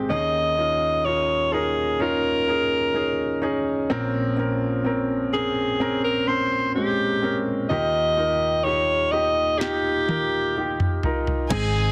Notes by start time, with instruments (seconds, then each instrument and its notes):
Already playing: grand piano G4
0.09 grand piano D#2 D#3 C#4 D#4 G#4, alto saxophone D#5
0.57 grand piano C#4 D#4 F4
1.05 grand piano C#4 D#4 F4, alto saxophone C#5
1.52 grand piano C#4 D#4 A#4, alto saxophone G#4
2.00 grand piano C#4 D#4 F4, alto saxophone A#4
2.47 grand piano C#4 D#4 G#4
2.94 grand piano C#4 D#4 G#4
3.42 grand piano C#4 D#4 G#4
3.90 grand piano A#1 A#2 C4 C#4 A#4
4.37 grand piano C4 C#4 A#4
4.84 grand piano C4 C#4 A#4
5.33 grand piano C4 C#4 A#4, alto saxophone G#4
5.80 grand piano C4 C#4 A#4
6.04 alto saxophone A#4
6.27 grand piano C4 C#4 A#4, alto saxophone C5
6.75 grand piano G#3 C4 C#4, alto saxophone G4
7.22 grand piano C4 C#4 A#4
7.69 grand piano D#2 D#3 D#4 F4 G4, alto saxophone D#5
8.17 grand piano D#4 F4 A#4
8.63 grand piano D#4 F4 G4, alto saxophone C#5
9.11 grand piano D#4 F4 G4, alto saxophone D#5
9.58 grand piano D#4 F4 G4, alto saxophone G4, snare
10.08 grand piano D#4 F4 A#4, high tom
10.56 grand piano D#4 F4 G4
10.80 mid tom
11.03 grand piano D#4 F4 A#4, floor tom
11.27 floor tom
11.50 fingered electric bass G#1, grand piano G#2 C4 D#4 G#4, ambient pad C3 C4 D#4, alto saxophone G#4, violin section G#5, kick, crash, ride